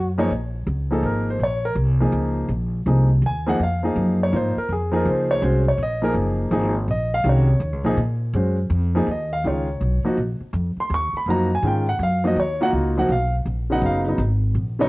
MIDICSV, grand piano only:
0, 0, Header, 1, 2, 480
1, 0, Start_track
1, 0, Key_signature, -5, "minor"
1, 0, Tempo, 365408
1, 403, Time_signature, 3, 2, 24, 8
1, 11929, Key_signature, -6, "minor"
1, 19558, End_track
2, 0, Start_track
2, 0, Title_t, "Grand piano"
2, 0, Program_c, 0, 0
2, 233, Note_on_c, 0, 53, 81
2, 241, Note_on_c, 0, 58, 75
2, 241, Note_on_c, 0, 63, 79
2, 245, Note_on_c, 0, 68, 77
2, 253, Note_on_c, 0, 73, 83
2, 387, Note_off_c, 0, 53, 0
2, 391, Note_off_c, 0, 58, 0
2, 391, Note_off_c, 0, 63, 0
2, 393, Note_off_c, 0, 68, 0
2, 397, Note_off_c, 0, 73, 0
2, 1190, Note_on_c, 0, 53, 69
2, 1198, Note_on_c, 0, 58, 61
2, 1202, Note_on_c, 0, 63, 64
2, 1212, Note_on_c, 0, 68, 68
2, 1218, Note_on_c, 0, 69, 75
2, 1372, Note_off_c, 0, 69, 0
2, 1388, Note_on_c, 0, 70, 79
2, 1674, Note_off_c, 0, 70, 0
2, 1710, Note_on_c, 0, 72, 80
2, 1808, Note_off_c, 0, 53, 0
2, 1812, Note_off_c, 0, 58, 0
2, 1814, Note_off_c, 0, 63, 0
2, 1819, Note_off_c, 0, 68, 0
2, 1858, Note_off_c, 0, 72, 0
2, 1884, Note_on_c, 0, 73, 88
2, 2163, Note_off_c, 0, 73, 0
2, 2170, Note_on_c, 0, 70, 89
2, 2267, Note_off_c, 0, 70, 0
2, 2630, Note_on_c, 0, 53, 70
2, 2634, Note_on_c, 0, 58, 67
2, 2643, Note_on_c, 0, 63, 62
2, 2651, Note_on_c, 0, 68, 76
2, 3248, Note_off_c, 0, 53, 0
2, 3250, Note_off_c, 0, 58, 0
2, 3255, Note_off_c, 0, 63, 0
2, 3258, Note_off_c, 0, 68, 0
2, 3762, Note_on_c, 0, 53, 61
2, 3771, Note_on_c, 0, 58, 52
2, 3771, Note_on_c, 0, 63, 57
2, 3779, Note_on_c, 0, 68, 67
2, 4039, Note_off_c, 0, 53, 0
2, 4044, Note_off_c, 0, 58, 0
2, 4044, Note_off_c, 0, 63, 0
2, 4048, Note_off_c, 0, 68, 0
2, 4284, Note_on_c, 0, 80, 87
2, 4551, Note_on_c, 0, 53, 80
2, 4557, Note_on_c, 0, 58, 75
2, 4563, Note_off_c, 0, 80, 0
2, 4565, Note_on_c, 0, 63, 71
2, 4572, Note_on_c, 0, 68, 88
2, 4587, Note_on_c, 0, 78, 82
2, 4706, Note_off_c, 0, 53, 0
2, 4709, Note_off_c, 0, 58, 0
2, 4713, Note_off_c, 0, 63, 0
2, 4716, Note_off_c, 0, 68, 0
2, 4736, Note_off_c, 0, 78, 0
2, 4771, Note_on_c, 0, 77, 80
2, 5030, Note_on_c, 0, 53, 66
2, 5035, Note_on_c, 0, 58, 60
2, 5046, Note_on_c, 0, 63, 61
2, 5056, Note_on_c, 0, 68, 75
2, 5483, Note_off_c, 0, 77, 0
2, 5560, Note_on_c, 0, 73, 85
2, 5648, Note_off_c, 0, 53, 0
2, 5651, Note_off_c, 0, 58, 0
2, 5656, Note_off_c, 0, 63, 0
2, 5661, Note_off_c, 0, 68, 0
2, 5674, Note_on_c, 0, 53, 59
2, 5683, Note_on_c, 0, 58, 55
2, 5685, Note_on_c, 0, 63, 57
2, 5691, Note_on_c, 0, 65, 69
2, 5703, Note_off_c, 0, 73, 0
2, 5728, Note_on_c, 0, 72, 85
2, 5956, Note_off_c, 0, 53, 0
2, 5960, Note_off_c, 0, 58, 0
2, 5962, Note_off_c, 0, 63, 0
2, 5964, Note_off_c, 0, 65, 0
2, 6005, Note_off_c, 0, 72, 0
2, 6019, Note_on_c, 0, 70, 79
2, 6172, Note_off_c, 0, 70, 0
2, 6207, Note_on_c, 0, 68, 76
2, 6458, Note_on_c, 0, 53, 75
2, 6462, Note_off_c, 0, 68, 0
2, 6465, Note_on_c, 0, 58, 62
2, 6474, Note_on_c, 0, 63, 68
2, 6482, Note_on_c, 0, 68, 84
2, 6516, Note_on_c, 0, 70, 75
2, 6661, Note_off_c, 0, 70, 0
2, 6684, Note_on_c, 0, 72, 69
2, 6963, Note_off_c, 0, 72, 0
2, 6974, Note_on_c, 0, 73, 98
2, 7083, Note_off_c, 0, 53, 0
2, 7086, Note_off_c, 0, 58, 0
2, 7091, Note_off_c, 0, 63, 0
2, 7095, Note_off_c, 0, 68, 0
2, 7122, Note_on_c, 0, 56, 68
2, 7126, Note_on_c, 0, 61, 67
2, 7130, Note_off_c, 0, 73, 0
2, 7134, Note_on_c, 0, 66, 61
2, 7138, Note_on_c, 0, 72, 81
2, 7400, Note_off_c, 0, 56, 0
2, 7402, Note_off_c, 0, 61, 0
2, 7406, Note_off_c, 0, 66, 0
2, 7408, Note_off_c, 0, 72, 0
2, 7467, Note_on_c, 0, 73, 80
2, 7617, Note_off_c, 0, 73, 0
2, 7655, Note_on_c, 0, 75, 90
2, 7906, Note_on_c, 0, 53, 71
2, 7908, Note_on_c, 0, 58, 67
2, 7918, Note_on_c, 0, 63, 60
2, 7925, Note_on_c, 0, 68, 75
2, 7929, Note_off_c, 0, 75, 0
2, 7936, Note_on_c, 0, 70, 89
2, 8032, Note_off_c, 0, 70, 0
2, 8527, Note_off_c, 0, 53, 0
2, 8528, Note_off_c, 0, 58, 0
2, 8533, Note_off_c, 0, 63, 0
2, 8537, Note_off_c, 0, 68, 0
2, 8552, Note_on_c, 0, 53, 70
2, 8561, Note_on_c, 0, 58, 65
2, 8569, Note_on_c, 0, 63, 73
2, 8575, Note_on_c, 0, 68, 83
2, 8836, Note_off_c, 0, 53, 0
2, 8840, Note_off_c, 0, 58, 0
2, 8844, Note_off_c, 0, 63, 0
2, 8847, Note_off_c, 0, 68, 0
2, 9073, Note_on_c, 0, 75, 77
2, 9358, Note_off_c, 0, 75, 0
2, 9381, Note_on_c, 0, 77, 106
2, 9522, Note_on_c, 0, 51, 61
2, 9535, Note_off_c, 0, 77, 0
2, 9536, Note_on_c, 0, 56, 55
2, 9536, Note_on_c, 0, 61, 57
2, 9546, Note_on_c, 0, 66, 66
2, 9578, Note_on_c, 0, 73, 79
2, 9801, Note_off_c, 0, 51, 0
2, 9808, Note_off_c, 0, 56, 0
2, 9808, Note_off_c, 0, 61, 0
2, 9813, Note_off_c, 0, 66, 0
2, 10288, Note_off_c, 0, 73, 0
2, 10306, Note_on_c, 0, 53, 81
2, 10314, Note_on_c, 0, 58, 75
2, 10320, Note_on_c, 0, 63, 80
2, 10327, Note_on_c, 0, 68, 89
2, 10465, Note_off_c, 0, 53, 0
2, 10469, Note_off_c, 0, 58, 0
2, 10472, Note_off_c, 0, 63, 0
2, 10476, Note_off_c, 0, 68, 0
2, 10966, Note_on_c, 0, 56, 58
2, 10972, Note_on_c, 0, 61, 54
2, 10980, Note_on_c, 0, 66, 55
2, 10986, Note_on_c, 0, 72, 64
2, 11244, Note_off_c, 0, 56, 0
2, 11247, Note_off_c, 0, 61, 0
2, 11251, Note_off_c, 0, 66, 0
2, 11254, Note_off_c, 0, 72, 0
2, 11756, Note_on_c, 0, 53, 83
2, 11763, Note_on_c, 0, 58, 69
2, 11768, Note_on_c, 0, 63, 70
2, 11781, Note_on_c, 0, 68, 84
2, 11911, Note_off_c, 0, 53, 0
2, 11915, Note_off_c, 0, 58, 0
2, 11917, Note_off_c, 0, 63, 0
2, 11923, Note_off_c, 0, 68, 0
2, 11970, Note_on_c, 0, 75, 72
2, 12249, Note_off_c, 0, 75, 0
2, 12254, Note_on_c, 0, 77, 92
2, 12412, Note_off_c, 0, 77, 0
2, 12415, Note_on_c, 0, 51, 62
2, 12423, Note_on_c, 0, 56, 53
2, 12426, Note_on_c, 0, 61, 52
2, 12432, Note_on_c, 0, 65, 65
2, 12444, Note_on_c, 0, 73, 68
2, 12689, Note_off_c, 0, 51, 0
2, 12693, Note_off_c, 0, 56, 0
2, 12695, Note_off_c, 0, 61, 0
2, 12698, Note_off_c, 0, 65, 0
2, 13163, Note_off_c, 0, 73, 0
2, 13196, Note_on_c, 0, 53, 77
2, 13200, Note_on_c, 0, 58, 66
2, 13207, Note_on_c, 0, 63, 69
2, 13215, Note_on_c, 0, 66, 83
2, 13352, Note_off_c, 0, 53, 0
2, 13354, Note_off_c, 0, 58, 0
2, 13357, Note_off_c, 0, 63, 0
2, 13361, Note_off_c, 0, 66, 0
2, 14190, Note_on_c, 0, 84, 88
2, 14342, Note_off_c, 0, 84, 0
2, 14372, Note_on_c, 0, 85, 107
2, 14651, Note_off_c, 0, 85, 0
2, 14673, Note_on_c, 0, 83, 88
2, 14815, Note_on_c, 0, 53, 69
2, 14822, Note_on_c, 0, 58, 69
2, 14823, Note_off_c, 0, 83, 0
2, 14827, Note_on_c, 0, 63, 66
2, 14839, Note_on_c, 0, 66, 80
2, 14848, Note_on_c, 0, 82, 87
2, 15090, Note_off_c, 0, 53, 0
2, 15094, Note_off_c, 0, 58, 0
2, 15096, Note_off_c, 0, 63, 0
2, 15102, Note_off_c, 0, 66, 0
2, 15129, Note_off_c, 0, 82, 0
2, 15170, Note_on_c, 0, 80, 80
2, 15294, Note_on_c, 0, 51, 68
2, 15297, Note_on_c, 0, 56, 60
2, 15304, Note_on_c, 0, 61, 59
2, 15308, Note_on_c, 0, 65, 64
2, 15312, Note_off_c, 0, 80, 0
2, 15330, Note_on_c, 0, 79, 79
2, 15569, Note_off_c, 0, 51, 0
2, 15571, Note_off_c, 0, 56, 0
2, 15575, Note_off_c, 0, 61, 0
2, 15577, Note_off_c, 0, 65, 0
2, 15610, Note_off_c, 0, 79, 0
2, 15617, Note_on_c, 0, 78, 89
2, 15775, Note_off_c, 0, 78, 0
2, 15805, Note_on_c, 0, 77, 91
2, 16076, Note_on_c, 0, 53, 70
2, 16082, Note_on_c, 0, 58, 69
2, 16086, Note_on_c, 0, 63, 67
2, 16087, Note_off_c, 0, 77, 0
2, 16091, Note_on_c, 0, 66, 81
2, 16118, Note_on_c, 0, 75, 80
2, 16232, Note_off_c, 0, 53, 0
2, 16235, Note_off_c, 0, 58, 0
2, 16237, Note_off_c, 0, 63, 0
2, 16240, Note_off_c, 0, 66, 0
2, 16266, Note_off_c, 0, 75, 0
2, 16283, Note_on_c, 0, 73, 80
2, 16559, Note_on_c, 0, 65, 76
2, 16566, Note_off_c, 0, 73, 0
2, 16566, Note_on_c, 0, 58, 67
2, 16569, Note_on_c, 0, 63, 68
2, 16574, Note_on_c, 0, 66, 75
2, 16588, Note_on_c, 0, 78, 98
2, 16682, Note_off_c, 0, 78, 0
2, 17007, Note_off_c, 0, 65, 0
2, 17010, Note_off_c, 0, 58, 0
2, 17012, Note_off_c, 0, 63, 0
2, 17015, Note_off_c, 0, 66, 0
2, 17043, Note_on_c, 0, 53, 73
2, 17049, Note_on_c, 0, 58, 68
2, 17056, Note_on_c, 0, 63, 63
2, 17062, Note_on_c, 0, 78, 81
2, 17064, Note_on_c, 0, 66, 80
2, 17194, Note_off_c, 0, 53, 0
2, 17198, Note_off_c, 0, 58, 0
2, 17201, Note_off_c, 0, 63, 0
2, 17205, Note_off_c, 0, 66, 0
2, 17216, Note_off_c, 0, 78, 0
2, 17236, Note_on_c, 0, 77, 83
2, 17521, Note_off_c, 0, 77, 0
2, 17994, Note_on_c, 0, 49, 68
2, 18007, Note_on_c, 0, 54, 63
2, 18012, Note_on_c, 0, 59, 61
2, 18020, Note_on_c, 0, 63, 79
2, 18027, Note_on_c, 0, 78, 90
2, 18178, Note_off_c, 0, 78, 0
2, 18204, Note_on_c, 0, 77, 88
2, 18377, Note_off_c, 0, 77, 0
2, 18442, Note_off_c, 0, 49, 0
2, 18448, Note_off_c, 0, 54, 0
2, 18451, Note_off_c, 0, 59, 0
2, 18455, Note_off_c, 0, 63, 0
2, 18481, Note_on_c, 0, 49, 59
2, 18491, Note_on_c, 0, 54, 61
2, 18501, Note_on_c, 0, 59, 56
2, 18507, Note_on_c, 0, 63, 67
2, 18631, Note_off_c, 0, 49, 0
2, 18636, Note_off_c, 0, 54, 0
2, 18642, Note_off_c, 0, 59, 0
2, 18644, Note_off_c, 0, 63, 0
2, 19431, Note_on_c, 0, 49, 75
2, 19441, Note_on_c, 0, 54, 71
2, 19444, Note_on_c, 0, 59, 73
2, 19450, Note_on_c, 0, 63, 87
2, 19457, Note_on_c, 0, 73, 85
2, 19558, Note_off_c, 0, 49, 0
2, 19558, Note_off_c, 0, 54, 0
2, 19558, Note_off_c, 0, 59, 0
2, 19558, Note_off_c, 0, 63, 0
2, 19558, Note_off_c, 0, 73, 0
2, 19558, End_track
0, 0, End_of_file